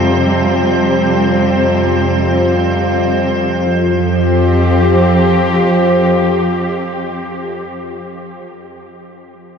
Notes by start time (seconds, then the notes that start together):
Already playing: F2 C3 F3 G3 C4 C5
3.68 F2 F3
3.87 C4
4.07 G4